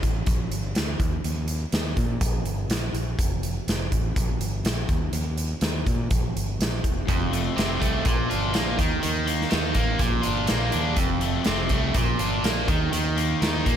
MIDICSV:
0, 0, Header, 1, 5, 480
1, 0, Start_track
1, 0, Tempo, 487013
1, 1228, Time_signature, 4, 2, 24, 8
1, 13567, End_track
2, 0, Start_track
2, 0, Title_t, "Overdriven electric guitar"
2, 0, Program_c, 0, 29
2, 6971, Note_on_c, 0, 41, 63
2, 7215, Note_on_c, 0, 57, 57
2, 7450, Note_on_c, 0, 60, 58
2, 7672, Note_off_c, 0, 57, 0
2, 7683, Note_on_c, 0, 57, 65
2, 7931, Note_on_c, 0, 46, 64
2, 7933, Note_off_c, 0, 57, 0
2, 7936, Note_off_c, 0, 41, 0
2, 7936, Note_off_c, 0, 60, 0
2, 8177, Note_on_c, 0, 65, 65
2, 8417, Note_on_c, 0, 58, 60
2, 8653, Note_on_c, 0, 51, 61
2, 8656, Note_off_c, 0, 46, 0
2, 8659, Note_off_c, 0, 58, 0
2, 8659, Note_off_c, 0, 65, 0
2, 8873, Note_off_c, 0, 51, 0
2, 8885, Note_on_c, 0, 51, 60
2, 9124, Note_on_c, 0, 58, 69
2, 9363, Note_on_c, 0, 63, 57
2, 9594, Note_off_c, 0, 58, 0
2, 9606, Note_on_c, 0, 58, 61
2, 9841, Note_on_c, 0, 46, 62
2, 9853, Note_off_c, 0, 63, 0
2, 9854, Note_off_c, 0, 51, 0
2, 9854, Note_off_c, 0, 58, 0
2, 10073, Note_on_c, 0, 65, 62
2, 10317, Note_on_c, 0, 58, 67
2, 10565, Note_on_c, 0, 62, 62
2, 10797, Note_on_c, 0, 41, 60
2, 10808, Note_off_c, 0, 65, 0
2, 10810, Note_off_c, 0, 58, 0
2, 10812, Note_off_c, 0, 46, 0
2, 10814, Note_off_c, 0, 62, 0
2, 11048, Note_on_c, 0, 57, 58
2, 11290, Note_on_c, 0, 60, 59
2, 11523, Note_off_c, 0, 57, 0
2, 11534, Note_on_c, 0, 57, 62
2, 11771, Note_off_c, 0, 41, 0
2, 11773, Note_on_c, 0, 46, 58
2, 11777, Note_off_c, 0, 60, 0
2, 11779, Note_off_c, 0, 57, 0
2, 12020, Note_on_c, 0, 65, 68
2, 12256, Note_on_c, 0, 58, 68
2, 12490, Note_on_c, 0, 51, 67
2, 12499, Note_off_c, 0, 46, 0
2, 12500, Note_off_c, 0, 58, 0
2, 12502, Note_off_c, 0, 65, 0
2, 12722, Note_off_c, 0, 51, 0
2, 12734, Note_on_c, 0, 51, 64
2, 12974, Note_on_c, 0, 58, 64
2, 13217, Note_on_c, 0, 63, 69
2, 13444, Note_off_c, 0, 58, 0
2, 13456, Note_on_c, 0, 58, 68
2, 13567, Note_off_c, 0, 51, 0
2, 13567, Note_off_c, 0, 58, 0
2, 13567, Note_off_c, 0, 63, 0
2, 13567, End_track
3, 0, Start_track
3, 0, Title_t, "Overdriven electric guitar"
3, 0, Program_c, 1, 29
3, 7451, Note_on_c, 1, 48, 76
3, 7934, Note_off_c, 1, 48, 0
3, 8180, Note_on_c, 1, 62, 64
3, 8661, Note_off_c, 1, 62, 0
3, 9366, Note_on_c, 1, 51, 72
3, 9854, Note_off_c, 1, 51, 0
3, 10095, Note_on_c, 1, 62, 66
3, 10568, Note_off_c, 1, 62, 0
3, 11300, Note_on_c, 1, 48, 72
3, 11767, Note_off_c, 1, 48, 0
3, 12020, Note_on_c, 1, 62, 65
3, 12502, Note_off_c, 1, 62, 0
3, 13231, Note_on_c, 1, 51, 70
3, 13567, Note_off_c, 1, 51, 0
3, 13567, End_track
4, 0, Start_track
4, 0, Title_t, "Fingered electric bass"
4, 0, Program_c, 2, 33
4, 26, Note_on_c, 2, 33, 81
4, 223, Note_off_c, 2, 33, 0
4, 264, Note_on_c, 2, 34, 89
4, 462, Note_off_c, 2, 34, 0
4, 500, Note_on_c, 2, 31, 78
4, 700, Note_off_c, 2, 31, 0
4, 739, Note_on_c, 2, 38, 65
4, 939, Note_off_c, 2, 38, 0
4, 982, Note_on_c, 2, 39, 81
4, 1180, Note_off_c, 2, 39, 0
4, 1224, Note_on_c, 2, 39, 76
4, 1618, Note_off_c, 2, 39, 0
4, 1703, Note_on_c, 2, 39, 80
4, 1901, Note_off_c, 2, 39, 0
4, 1942, Note_on_c, 2, 46, 81
4, 2140, Note_off_c, 2, 46, 0
4, 2182, Note_on_c, 2, 34, 89
4, 2380, Note_off_c, 2, 34, 0
4, 2408, Note_on_c, 2, 31, 70
4, 2612, Note_off_c, 2, 31, 0
4, 2649, Note_on_c, 2, 34, 78
4, 2853, Note_off_c, 2, 34, 0
4, 2888, Note_on_c, 2, 34, 79
4, 3092, Note_off_c, 2, 34, 0
4, 3141, Note_on_c, 2, 29, 80
4, 3536, Note_off_c, 2, 29, 0
4, 3622, Note_on_c, 2, 29, 82
4, 3820, Note_off_c, 2, 29, 0
4, 3864, Note_on_c, 2, 33, 85
4, 4061, Note_off_c, 2, 33, 0
4, 4109, Note_on_c, 2, 34, 79
4, 4304, Note_off_c, 2, 34, 0
4, 4336, Note_on_c, 2, 31, 81
4, 4536, Note_off_c, 2, 31, 0
4, 4569, Note_on_c, 2, 34, 73
4, 4772, Note_off_c, 2, 34, 0
4, 4824, Note_on_c, 2, 39, 77
4, 5020, Note_off_c, 2, 39, 0
4, 5047, Note_on_c, 2, 39, 83
4, 5447, Note_off_c, 2, 39, 0
4, 5535, Note_on_c, 2, 39, 87
4, 5735, Note_off_c, 2, 39, 0
4, 5781, Note_on_c, 2, 46, 82
4, 5978, Note_off_c, 2, 46, 0
4, 6021, Note_on_c, 2, 34, 84
4, 6218, Note_off_c, 2, 34, 0
4, 6267, Note_on_c, 2, 31, 81
4, 6462, Note_off_c, 2, 31, 0
4, 6496, Note_on_c, 2, 34, 69
4, 6695, Note_off_c, 2, 34, 0
4, 6743, Note_on_c, 2, 28, 88
4, 6939, Note_off_c, 2, 28, 0
4, 6982, Note_on_c, 2, 29, 82
4, 7375, Note_off_c, 2, 29, 0
4, 7462, Note_on_c, 2, 29, 81
4, 7658, Note_off_c, 2, 29, 0
4, 7711, Note_on_c, 2, 36, 86
4, 7904, Note_off_c, 2, 36, 0
4, 7942, Note_on_c, 2, 34, 83
4, 8138, Note_off_c, 2, 34, 0
4, 8203, Note_on_c, 2, 31, 73
4, 8390, Note_off_c, 2, 31, 0
4, 8436, Note_on_c, 2, 34, 75
4, 8626, Note_off_c, 2, 34, 0
4, 8665, Note_on_c, 2, 39, 83
4, 8860, Note_off_c, 2, 39, 0
4, 8916, Note_on_c, 2, 39, 79
4, 9303, Note_off_c, 2, 39, 0
4, 9390, Note_on_c, 2, 39, 76
4, 9583, Note_off_c, 2, 39, 0
4, 9609, Note_on_c, 2, 33, 79
4, 9811, Note_off_c, 2, 33, 0
4, 9856, Note_on_c, 2, 34, 86
4, 10055, Note_off_c, 2, 34, 0
4, 10115, Note_on_c, 2, 31, 75
4, 10306, Note_off_c, 2, 31, 0
4, 10349, Note_on_c, 2, 34, 75
4, 10542, Note_off_c, 2, 34, 0
4, 10589, Note_on_c, 2, 39, 77
4, 10783, Note_off_c, 2, 39, 0
4, 10812, Note_on_c, 2, 29, 73
4, 11209, Note_off_c, 2, 29, 0
4, 11304, Note_on_c, 2, 29, 88
4, 11500, Note_off_c, 2, 29, 0
4, 11535, Note_on_c, 2, 36, 92
4, 11735, Note_off_c, 2, 36, 0
4, 11780, Note_on_c, 2, 34, 85
4, 11978, Note_off_c, 2, 34, 0
4, 12016, Note_on_c, 2, 31, 75
4, 12215, Note_off_c, 2, 31, 0
4, 12260, Note_on_c, 2, 34, 74
4, 12458, Note_off_c, 2, 34, 0
4, 12502, Note_on_c, 2, 39, 83
4, 12700, Note_off_c, 2, 39, 0
4, 12742, Note_on_c, 2, 39, 76
4, 13136, Note_off_c, 2, 39, 0
4, 13225, Note_on_c, 2, 39, 88
4, 13421, Note_off_c, 2, 39, 0
4, 13469, Note_on_c, 2, 46, 85
4, 13567, Note_off_c, 2, 46, 0
4, 13567, End_track
5, 0, Start_track
5, 0, Title_t, "Drums"
5, 30, Note_on_c, 9, 36, 77
5, 30, Note_on_c, 9, 42, 58
5, 128, Note_off_c, 9, 42, 0
5, 129, Note_off_c, 9, 36, 0
5, 261, Note_on_c, 9, 42, 73
5, 267, Note_on_c, 9, 36, 112
5, 359, Note_off_c, 9, 42, 0
5, 365, Note_off_c, 9, 36, 0
5, 508, Note_on_c, 9, 42, 58
5, 606, Note_off_c, 9, 42, 0
5, 741, Note_on_c, 9, 42, 68
5, 753, Note_on_c, 9, 38, 91
5, 840, Note_off_c, 9, 42, 0
5, 852, Note_off_c, 9, 38, 0
5, 983, Note_on_c, 9, 36, 90
5, 986, Note_on_c, 9, 42, 50
5, 1081, Note_off_c, 9, 36, 0
5, 1085, Note_off_c, 9, 42, 0
5, 1226, Note_on_c, 9, 42, 66
5, 1325, Note_off_c, 9, 42, 0
5, 1456, Note_on_c, 9, 42, 55
5, 1555, Note_off_c, 9, 42, 0
5, 1700, Note_on_c, 9, 42, 74
5, 1711, Note_on_c, 9, 38, 97
5, 1798, Note_off_c, 9, 42, 0
5, 1810, Note_off_c, 9, 38, 0
5, 1940, Note_on_c, 9, 36, 90
5, 1941, Note_on_c, 9, 42, 54
5, 2039, Note_off_c, 9, 36, 0
5, 2039, Note_off_c, 9, 42, 0
5, 2178, Note_on_c, 9, 42, 86
5, 2179, Note_on_c, 9, 36, 109
5, 2277, Note_off_c, 9, 42, 0
5, 2278, Note_off_c, 9, 36, 0
5, 2420, Note_on_c, 9, 42, 57
5, 2518, Note_off_c, 9, 42, 0
5, 2659, Note_on_c, 9, 42, 67
5, 2671, Note_on_c, 9, 38, 88
5, 2758, Note_off_c, 9, 42, 0
5, 2769, Note_off_c, 9, 38, 0
5, 2902, Note_on_c, 9, 42, 50
5, 3001, Note_off_c, 9, 42, 0
5, 3141, Note_on_c, 9, 36, 91
5, 3145, Note_on_c, 9, 42, 82
5, 3239, Note_off_c, 9, 36, 0
5, 3244, Note_off_c, 9, 42, 0
5, 3383, Note_on_c, 9, 42, 58
5, 3481, Note_off_c, 9, 42, 0
5, 3627, Note_on_c, 9, 42, 64
5, 3639, Note_on_c, 9, 38, 81
5, 3726, Note_off_c, 9, 42, 0
5, 3737, Note_off_c, 9, 38, 0
5, 3864, Note_on_c, 9, 36, 73
5, 3864, Note_on_c, 9, 42, 57
5, 3962, Note_off_c, 9, 36, 0
5, 3962, Note_off_c, 9, 42, 0
5, 4103, Note_on_c, 9, 36, 102
5, 4106, Note_on_c, 9, 42, 74
5, 4201, Note_off_c, 9, 36, 0
5, 4205, Note_off_c, 9, 42, 0
5, 4344, Note_on_c, 9, 42, 60
5, 4443, Note_off_c, 9, 42, 0
5, 4581, Note_on_c, 9, 42, 72
5, 4593, Note_on_c, 9, 38, 100
5, 4680, Note_off_c, 9, 42, 0
5, 4692, Note_off_c, 9, 38, 0
5, 4819, Note_on_c, 9, 36, 89
5, 4819, Note_on_c, 9, 42, 52
5, 4917, Note_off_c, 9, 36, 0
5, 4917, Note_off_c, 9, 42, 0
5, 5055, Note_on_c, 9, 42, 79
5, 5153, Note_off_c, 9, 42, 0
5, 5298, Note_on_c, 9, 42, 55
5, 5396, Note_off_c, 9, 42, 0
5, 5531, Note_on_c, 9, 42, 68
5, 5543, Note_on_c, 9, 38, 89
5, 5630, Note_off_c, 9, 42, 0
5, 5641, Note_off_c, 9, 38, 0
5, 5780, Note_on_c, 9, 36, 78
5, 5784, Note_on_c, 9, 42, 58
5, 5879, Note_off_c, 9, 36, 0
5, 5883, Note_off_c, 9, 42, 0
5, 6018, Note_on_c, 9, 42, 76
5, 6021, Note_on_c, 9, 36, 99
5, 6117, Note_off_c, 9, 42, 0
5, 6120, Note_off_c, 9, 36, 0
5, 6275, Note_on_c, 9, 42, 57
5, 6374, Note_off_c, 9, 42, 0
5, 6511, Note_on_c, 9, 42, 74
5, 6523, Note_on_c, 9, 38, 98
5, 6609, Note_off_c, 9, 42, 0
5, 6621, Note_off_c, 9, 38, 0
5, 6742, Note_on_c, 9, 36, 67
5, 6743, Note_on_c, 9, 42, 54
5, 6840, Note_off_c, 9, 36, 0
5, 6842, Note_off_c, 9, 42, 0
5, 6983, Note_on_c, 9, 36, 91
5, 6983, Note_on_c, 9, 42, 80
5, 7082, Note_off_c, 9, 36, 0
5, 7082, Note_off_c, 9, 42, 0
5, 7228, Note_on_c, 9, 42, 60
5, 7327, Note_off_c, 9, 42, 0
5, 7470, Note_on_c, 9, 42, 71
5, 7481, Note_on_c, 9, 38, 90
5, 7568, Note_off_c, 9, 42, 0
5, 7580, Note_off_c, 9, 38, 0
5, 7704, Note_on_c, 9, 36, 80
5, 7711, Note_on_c, 9, 42, 62
5, 7803, Note_off_c, 9, 36, 0
5, 7810, Note_off_c, 9, 42, 0
5, 7934, Note_on_c, 9, 42, 82
5, 7941, Note_on_c, 9, 36, 111
5, 8033, Note_off_c, 9, 42, 0
5, 8040, Note_off_c, 9, 36, 0
5, 8187, Note_on_c, 9, 42, 55
5, 8286, Note_off_c, 9, 42, 0
5, 8415, Note_on_c, 9, 42, 72
5, 8427, Note_on_c, 9, 38, 88
5, 8514, Note_off_c, 9, 42, 0
5, 8526, Note_off_c, 9, 38, 0
5, 8660, Note_on_c, 9, 36, 85
5, 8663, Note_on_c, 9, 42, 62
5, 8759, Note_off_c, 9, 36, 0
5, 8761, Note_off_c, 9, 42, 0
5, 8898, Note_on_c, 9, 42, 78
5, 8997, Note_off_c, 9, 42, 0
5, 9142, Note_on_c, 9, 42, 57
5, 9240, Note_off_c, 9, 42, 0
5, 9279, Note_on_c, 9, 38, 34
5, 9370, Note_on_c, 9, 42, 67
5, 9377, Note_off_c, 9, 38, 0
5, 9382, Note_on_c, 9, 38, 98
5, 9469, Note_off_c, 9, 42, 0
5, 9481, Note_off_c, 9, 38, 0
5, 9605, Note_on_c, 9, 42, 60
5, 9611, Note_on_c, 9, 36, 85
5, 9703, Note_off_c, 9, 42, 0
5, 9710, Note_off_c, 9, 36, 0
5, 9849, Note_on_c, 9, 42, 76
5, 9851, Note_on_c, 9, 36, 105
5, 9948, Note_off_c, 9, 42, 0
5, 9949, Note_off_c, 9, 36, 0
5, 10086, Note_on_c, 9, 42, 59
5, 10184, Note_off_c, 9, 42, 0
5, 10323, Note_on_c, 9, 42, 75
5, 10335, Note_on_c, 9, 38, 94
5, 10421, Note_off_c, 9, 42, 0
5, 10433, Note_off_c, 9, 38, 0
5, 10567, Note_on_c, 9, 42, 55
5, 10665, Note_off_c, 9, 42, 0
5, 10807, Note_on_c, 9, 42, 75
5, 10810, Note_on_c, 9, 36, 93
5, 10906, Note_off_c, 9, 42, 0
5, 10909, Note_off_c, 9, 36, 0
5, 11048, Note_on_c, 9, 42, 55
5, 11147, Note_off_c, 9, 42, 0
5, 11280, Note_on_c, 9, 42, 73
5, 11292, Note_on_c, 9, 38, 97
5, 11379, Note_off_c, 9, 42, 0
5, 11390, Note_off_c, 9, 38, 0
5, 11525, Note_on_c, 9, 42, 64
5, 11532, Note_on_c, 9, 36, 75
5, 11623, Note_off_c, 9, 42, 0
5, 11631, Note_off_c, 9, 36, 0
5, 11772, Note_on_c, 9, 42, 81
5, 11775, Note_on_c, 9, 36, 102
5, 11870, Note_off_c, 9, 42, 0
5, 11873, Note_off_c, 9, 36, 0
5, 12017, Note_on_c, 9, 42, 68
5, 12116, Note_off_c, 9, 42, 0
5, 12262, Note_on_c, 9, 42, 78
5, 12274, Note_on_c, 9, 38, 99
5, 12361, Note_off_c, 9, 42, 0
5, 12373, Note_off_c, 9, 38, 0
5, 12499, Note_on_c, 9, 42, 60
5, 12500, Note_on_c, 9, 36, 99
5, 12598, Note_off_c, 9, 42, 0
5, 12599, Note_off_c, 9, 36, 0
5, 12743, Note_on_c, 9, 42, 85
5, 12841, Note_off_c, 9, 42, 0
5, 12988, Note_on_c, 9, 42, 57
5, 13086, Note_off_c, 9, 42, 0
5, 13228, Note_on_c, 9, 42, 67
5, 13239, Note_on_c, 9, 38, 101
5, 13326, Note_off_c, 9, 42, 0
5, 13338, Note_off_c, 9, 38, 0
5, 13466, Note_on_c, 9, 36, 88
5, 13467, Note_on_c, 9, 42, 60
5, 13564, Note_off_c, 9, 36, 0
5, 13566, Note_off_c, 9, 42, 0
5, 13567, End_track
0, 0, End_of_file